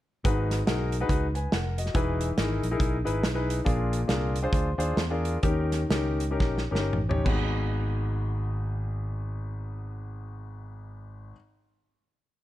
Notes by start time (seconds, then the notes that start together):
0.24 G#1 G#2 D#4 F#4 G#4 B4, kick, closed hi-hat
0.51 snare, closed hi-hat
0.67 B1 D#4 F#4 G#4 A#4, snare, closed hi-hat
0.92 closed hi-hat
1.00 D#4 F#4 G#4 B4
1.09 C#2, kick, closed hi-hat
1.35 B4 G#5, closed hi-hat
1.52 F1 A#4 F#5, snare, closed hi-hat
1.78 F#4 D#5, closed hi-hat
1.86 snare
1.94 E1 E3 D#4 E4 G#4 B4, kick, closed hi-hat
2.21 closed hi-hat
2.37 G#1 D#4 E4 G#4 A#4, snare, closed hi-hat
2.63 A#1, closed hi-hat
2.71 D#4 E4 G#4 A#4
2.80 B1, kick, closed hi-hat
3.05 G#1 D#4 E4 G#4 B4, closed hi-hat
3.24 B1, snare, closed hi-hat
3.34 D#4 E4 G#4 B4
3.50 closed hi-hat
3.65 A#1 A#2 D4 F4 G#4 A#4, kick, closed hi-hat
3.93 closed hi-hat
4.08 C2 D4 F4 G#4 A#4, snare, closed hi-hat
4.36 closed hi-hat
4.42 D4 F4 G#4 C5
4.53 D2, kick, closed hi-hat
4.78 D#2 D4 F4 G#4 C5, closed hi-hat
4.97 E2, snare, closed hi-hat
5.10 D4 F4 G#4 A#4
5.25 closed hi-hat
5.43 D#2 D#3 C#4 D#4 G4 A#4, kick, closed hi-hat
5.72 snare, closed hi-hat
5.90 C#2 C#4 D#4 G4 A#4, snare, closed hi-hat
6.20 closed hi-hat
6.31 C#4 D#4 G4 A#4
6.40 A#1, kick, snare
6.58 snare
6.71 G1 C#4 D#4 G4 A#4
6.75 snare
6.93 A1, mid tom
7.09 C#4 D#4 G4 C#5, floor tom
7.24 G#1 B3 D#4 F#4 G#4, kick, crash